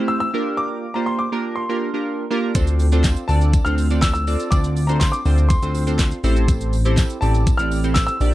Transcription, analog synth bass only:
0, 0, Header, 1, 2, 480
1, 0, Start_track
1, 0, Key_signature, -1, "minor"
1, 0, Tempo, 491803
1, 570, Time_signature, 4, 2, 24, 8
1, 8141, End_track
2, 0, Start_track
2, 0, Title_t, "Analog synth bass"
2, 0, Program_c, 0, 38
2, 2489, Note_on_c, 0, 38, 111
2, 3082, Note_off_c, 0, 38, 0
2, 3208, Note_on_c, 0, 38, 97
2, 3505, Note_off_c, 0, 38, 0
2, 3568, Note_on_c, 0, 38, 92
2, 4260, Note_off_c, 0, 38, 0
2, 4408, Note_on_c, 0, 38, 120
2, 5001, Note_off_c, 0, 38, 0
2, 5128, Note_on_c, 0, 38, 96
2, 5425, Note_off_c, 0, 38, 0
2, 5489, Note_on_c, 0, 38, 91
2, 5983, Note_off_c, 0, 38, 0
2, 6087, Note_on_c, 0, 33, 114
2, 6878, Note_off_c, 0, 33, 0
2, 7048, Note_on_c, 0, 33, 101
2, 7345, Note_off_c, 0, 33, 0
2, 7408, Note_on_c, 0, 33, 92
2, 7903, Note_off_c, 0, 33, 0
2, 8007, Note_on_c, 0, 34, 109
2, 8141, Note_off_c, 0, 34, 0
2, 8141, End_track
0, 0, End_of_file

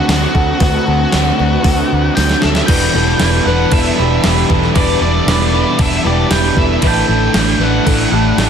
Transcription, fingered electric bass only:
0, 0, Header, 1, 2, 480
1, 0, Start_track
1, 0, Key_signature, 1, "minor"
1, 0, Tempo, 519031
1, 565, Time_signature, 4, 2, 24, 8
1, 7857, End_track
2, 0, Start_track
2, 0, Title_t, "Fingered electric bass"
2, 0, Program_c, 0, 33
2, 77, Note_on_c, 0, 38, 81
2, 231, Note_off_c, 0, 38, 0
2, 320, Note_on_c, 0, 38, 88
2, 473, Note_off_c, 0, 38, 0
2, 557, Note_on_c, 0, 38, 93
2, 711, Note_off_c, 0, 38, 0
2, 811, Note_on_c, 0, 38, 90
2, 961, Note_off_c, 0, 38, 0
2, 1052, Note_on_c, 0, 38, 90
2, 1201, Note_off_c, 0, 38, 0
2, 1292, Note_on_c, 0, 38, 86
2, 1441, Note_off_c, 0, 38, 0
2, 1517, Note_on_c, 0, 38, 87
2, 1671, Note_off_c, 0, 38, 0
2, 1780, Note_on_c, 0, 38, 88
2, 1927, Note_off_c, 0, 38, 0
2, 2009, Note_on_c, 0, 38, 89
2, 2159, Note_off_c, 0, 38, 0
2, 2256, Note_on_c, 0, 38, 90
2, 2404, Note_off_c, 0, 38, 0
2, 2484, Note_on_c, 0, 28, 94
2, 2651, Note_off_c, 0, 28, 0
2, 2726, Note_on_c, 0, 28, 90
2, 2892, Note_off_c, 0, 28, 0
2, 2964, Note_on_c, 0, 28, 95
2, 3131, Note_off_c, 0, 28, 0
2, 3197, Note_on_c, 0, 28, 92
2, 3366, Note_off_c, 0, 28, 0
2, 3440, Note_on_c, 0, 28, 81
2, 3608, Note_off_c, 0, 28, 0
2, 3692, Note_on_c, 0, 28, 92
2, 3856, Note_off_c, 0, 28, 0
2, 3929, Note_on_c, 0, 28, 91
2, 4094, Note_off_c, 0, 28, 0
2, 4161, Note_on_c, 0, 28, 94
2, 4329, Note_off_c, 0, 28, 0
2, 4399, Note_on_c, 0, 28, 91
2, 4567, Note_off_c, 0, 28, 0
2, 4629, Note_on_c, 0, 28, 89
2, 4801, Note_off_c, 0, 28, 0
2, 4870, Note_on_c, 0, 28, 93
2, 5209, Note_off_c, 0, 28, 0
2, 5354, Note_on_c, 0, 28, 85
2, 5524, Note_off_c, 0, 28, 0
2, 5591, Note_on_c, 0, 28, 88
2, 5762, Note_off_c, 0, 28, 0
2, 5832, Note_on_c, 0, 28, 90
2, 6003, Note_off_c, 0, 28, 0
2, 6072, Note_on_c, 0, 28, 96
2, 6243, Note_off_c, 0, 28, 0
2, 6315, Note_on_c, 0, 33, 94
2, 6485, Note_off_c, 0, 33, 0
2, 6555, Note_on_c, 0, 33, 91
2, 6725, Note_off_c, 0, 33, 0
2, 6796, Note_on_c, 0, 33, 97
2, 6966, Note_off_c, 0, 33, 0
2, 7022, Note_on_c, 0, 33, 94
2, 7196, Note_off_c, 0, 33, 0
2, 7275, Note_on_c, 0, 33, 87
2, 7445, Note_off_c, 0, 33, 0
2, 7507, Note_on_c, 0, 33, 88
2, 7680, Note_off_c, 0, 33, 0
2, 7746, Note_on_c, 0, 33, 88
2, 7857, Note_off_c, 0, 33, 0
2, 7857, End_track
0, 0, End_of_file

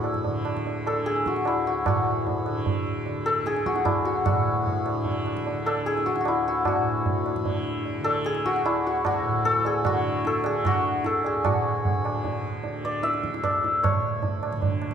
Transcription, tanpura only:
0, 0, Header, 1, 2, 480
1, 0, Start_track
1, 0, Tempo, 399467
1, 776, Time_signature, 3, 2, 24, 8
1, 17954, End_track
2, 0, Start_track
2, 0, Title_t, "Tanpura"
2, 0, Program_c, 0, 104
2, 0, Note_on_c, 0, 38, 50
2, 0, Note_on_c, 0, 45, 57
2, 0, Note_on_c, 0, 50, 52
2, 312, Note_off_c, 0, 50, 0
2, 312, Note_on_c, 0, 50, 49
2, 1050, Note_off_c, 0, 50, 0
2, 1050, Note_on_c, 0, 50, 53
2, 1798, Note_off_c, 0, 38, 0
2, 1803, Note_on_c, 0, 38, 53
2, 2223, Note_off_c, 0, 45, 0
2, 2227, Note_on_c, 0, 45, 58
2, 2977, Note_off_c, 0, 50, 0
2, 2977, Note_on_c, 0, 50, 54
2, 3710, Note_off_c, 0, 50, 0
2, 3710, Note_on_c, 0, 50, 54
2, 4437, Note_off_c, 0, 38, 0
2, 4441, Note_on_c, 0, 38, 54
2, 5184, Note_off_c, 0, 45, 0
2, 5189, Note_on_c, 0, 45, 60
2, 5927, Note_off_c, 0, 50, 0
2, 5927, Note_on_c, 0, 50, 58
2, 6654, Note_off_c, 0, 50, 0
2, 6654, Note_on_c, 0, 50, 54
2, 7399, Note_off_c, 0, 38, 0
2, 7404, Note_on_c, 0, 38, 59
2, 8148, Note_off_c, 0, 45, 0
2, 8153, Note_on_c, 0, 45, 52
2, 8881, Note_off_c, 0, 50, 0
2, 8881, Note_on_c, 0, 50, 59
2, 9622, Note_off_c, 0, 50, 0
2, 9622, Note_on_c, 0, 50, 63
2, 10366, Note_off_c, 0, 38, 0
2, 10371, Note_on_c, 0, 38, 57
2, 11098, Note_off_c, 0, 45, 0
2, 11103, Note_on_c, 0, 45, 62
2, 11829, Note_off_c, 0, 50, 0
2, 11829, Note_on_c, 0, 50, 61
2, 12577, Note_off_c, 0, 50, 0
2, 12577, Note_on_c, 0, 50, 58
2, 13312, Note_off_c, 0, 38, 0
2, 13317, Note_on_c, 0, 38, 56
2, 13732, Note_off_c, 0, 45, 0
2, 13736, Note_on_c, 0, 45, 57
2, 14499, Note_off_c, 0, 50, 0
2, 14499, Note_on_c, 0, 50, 51
2, 15236, Note_off_c, 0, 50, 0
2, 15236, Note_on_c, 0, 50, 54
2, 15980, Note_off_c, 0, 38, 0
2, 15985, Note_on_c, 0, 38, 54
2, 16708, Note_off_c, 0, 45, 0
2, 16713, Note_on_c, 0, 45, 52
2, 17435, Note_off_c, 0, 50, 0
2, 17435, Note_on_c, 0, 50, 54
2, 17954, Note_off_c, 0, 38, 0
2, 17954, Note_off_c, 0, 45, 0
2, 17954, Note_off_c, 0, 50, 0
2, 17954, End_track
0, 0, End_of_file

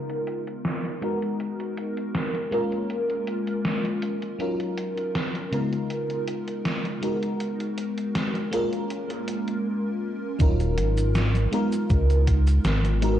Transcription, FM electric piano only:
0, 0, Header, 1, 2, 480
1, 0, Start_track
1, 0, Key_signature, -6, "minor"
1, 0, Tempo, 750000
1, 897, Time_signature, 4, 2, 24, 8
1, 8445, End_track
2, 0, Start_track
2, 0, Title_t, "FM electric piano"
2, 0, Program_c, 0, 5
2, 0, Control_c, 0, 64, 127
2, 0, Note_on_c, 0, 49, 75
2, 0, Note_on_c, 0, 56, 68
2, 0, Note_on_c, 0, 59, 68
2, 0, Note_on_c, 0, 63, 69
2, 0, Note_on_c, 0, 65, 68
2, 0, Note_on_c, 0, 70, 81
2, 607, Note_off_c, 0, 49, 0
2, 609, Note_off_c, 0, 56, 0
2, 611, Note_off_c, 0, 59, 0
2, 613, Note_off_c, 0, 63, 0
2, 615, Note_off_c, 0, 65, 0
2, 617, Note_off_c, 0, 70, 0
2, 647, Note_on_c, 0, 56, 75
2, 652, Note_on_c, 0, 59, 69
2, 656, Note_on_c, 0, 63, 68
2, 661, Note_on_c, 0, 66, 71
2, 665, Control_c, 0, 64, 0
2, 666, Note_on_c, 0, 70, 84
2, 772, Control_c, 0, 64, 127
2, 1566, Note_off_c, 0, 56, 0
2, 1569, Note_off_c, 0, 59, 0
2, 1571, Note_off_c, 0, 63, 0
2, 1574, Note_off_c, 0, 66, 0
2, 1576, Note_off_c, 0, 70, 0
2, 1606, Note_on_c, 0, 56, 89
2, 1612, Note_on_c, 0, 58, 80
2, 1616, Note_on_c, 0, 61, 78
2, 1621, Note_on_c, 0, 65, 81
2, 1624, Control_c, 0, 64, 0
2, 1625, Note_on_c, 0, 70, 94
2, 1737, Control_c, 0, 64, 127
2, 2766, Note_off_c, 0, 56, 0
2, 2769, Note_off_c, 0, 58, 0
2, 2771, Note_off_c, 0, 61, 0
2, 2774, Note_off_c, 0, 65, 0
2, 2776, Note_off_c, 0, 70, 0
2, 2806, Note_on_c, 0, 54, 79
2, 2811, Note_on_c, 0, 61, 69
2, 2816, Note_on_c, 0, 63, 71
2, 2821, Note_on_c, 0, 65, 72
2, 2825, Note_on_c, 0, 70, 87
2, 2826, Control_c, 0, 64, 0
2, 2956, Control_c, 0, 64, 127
2, 3486, Note_off_c, 0, 54, 0
2, 3489, Note_off_c, 0, 61, 0
2, 3491, Note_off_c, 0, 63, 0
2, 3494, Note_off_c, 0, 65, 0
2, 3496, Note_off_c, 0, 70, 0
2, 3528, Note_on_c, 0, 49, 76
2, 3531, Note_on_c, 0, 56, 72
2, 3535, Note_on_c, 0, 59, 69
2, 3539, Note_on_c, 0, 63, 72
2, 3542, Note_on_c, 0, 65, 70
2, 3544, Control_c, 0, 64, 0
2, 3546, Note_on_c, 0, 70, 82
2, 3672, Control_c, 0, 64, 127
2, 4447, Note_off_c, 0, 49, 0
2, 4449, Note_off_c, 0, 56, 0
2, 4450, Note_off_c, 0, 59, 0
2, 4453, Note_off_c, 0, 63, 0
2, 4454, Note_off_c, 0, 65, 0
2, 4456, Note_off_c, 0, 70, 0
2, 4486, Note_on_c, 0, 56, 78
2, 4491, Note_on_c, 0, 59, 70
2, 4496, Note_on_c, 0, 63, 72
2, 4501, Note_on_c, 0, 66, 71
2, 4503, Control_c, 0, 64, 0
2, 4506, Note_on_c, 0, 70, 84
2, 4627, Control_c, 0, 64, 127
2, 5406, Note_off_c, 0, 56, 0
2, 5409, Note_off_c, 0, 59, 0
2, 5411, Note_off_c, 0, 63, 0
2, 5413, Note_off_c, 0, 66, 0
2, 5416, Note_off_c, 0, 70, 0
2, 5448, Note_on_c, 0, 56, 88
2, 5452, Note_on_c, 0, 58, 83
2, 5457, Note_on_c, 0, 61, 80
2, 5462, Note_on_c, 0, 65, 80
2, 5466, Control_c, 0, 64, 0
2, 5466, Note_on_c, 0, 70, 99
2, 5571, Control_c, 0, 64, 127
2, 6172, Note_off_c, 0, 56, 0
2, 6174, Note_off_c, 0, 58, 0
2, 6177, Note_off_c, 0, 61, 0
2, 6179, Note_off_c, 0, 65, 0
2, 6181, Note_off_c, 0, 70, 0
2, 6647, Note_on_c, 0, 54, 80
2, 6652, Note_on_c, 0, 61, 74
2, 6657, Note_on_c, 0, 63, 76
2, 6661, Note_on_c, 0, 65, 74
2, 6664, Control_c, 0, 64, 0
2, 6666, Note_on_c, 0, 70, 88
2, 6795, Control_c, 0, 64, 127
2, 7327, Note_off_c, 0, 54, 0
2, 7329, Note_off_c, 0, 61, 0
2, 7331, Note_off_c, 0, 63, 0
2, 7334, Note_off_c, 0, 65, 0
2, 7336, Note_off_c, 0, 70, 0
2, 7367, Note_on_c, 0, 56, 82
2, 7372, Note_on_c, 0, 59, 76
2, 7377, Note_on_c, 0, 63, 73
2, 7382, Note_on_c, 0, 65, 76
2, 7385, Control_c, 0, 64, 0
2, 7386, Note_on_c, 0, 70, 89
2, 7485, Control_c, 0, 64, 127
2, 8287, Note_off_c, 0, 56, 0
2, 8289, Note_off_c, 0, 59, 0
2, 8292, Note_off_c, 0, 63, 0
2, 8294, Note_off_c, 0, 65, 0
2, 8296, Note_off_c, 0, 70, 0
2, 8328, Note_on_c, 0, 56, 82
2, 8332, Note_on_c, 0, 59, 75
2, 8337, Note_on_c, 0, 63, 74
2, 8343, Note_on_c, 0, 66, 75
2, 8346, Control_c, 0, 64, 0
2, 8347, Note_on_c, 0, 70, 89
2, 8445, Note_off_c, 0, 56, 0
2, 8445, Note_off_c, 0, 59, 0
2, 8445, Note_off_c, 0, 63, 0
2, 8445, Note_off_c, 0, 66, 0
2, 8445, Note_off_c, 0, 70, 0
2, 8445, End_track
0, 0, End_of_file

